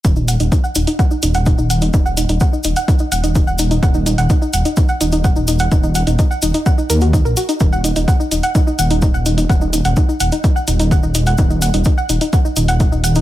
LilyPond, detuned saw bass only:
\new Staff \with { instrumentName = "Detuned saw bass" } { \clef bass \time 4/4 \key ees \minor \tempo 4 = 127 ees,,8. ees,,16 r8 ees,,16 r8. ees,,8. ees,,8. | ees,,8. ees,,16 r8 ees,,16 r8. ees,,8. ees,,8. | ees,,8. ees,,16 r8 ees,,16 r8. ees,,8. ees,,8. | ees,,8. ees,,16 r8 ees,,16 r8. ees,8. bes,,16 r8 |
ees,,8. ees,,16 r8 ees,,16 r8. ees,,8. ees,,8. | ees,,8. ees,,16 r8 ees,,16 r8. ees,,8. ees,,8. | ees,,8. ees,,16 r8 ees,,16 r8. ees,,8. ees,,8. | }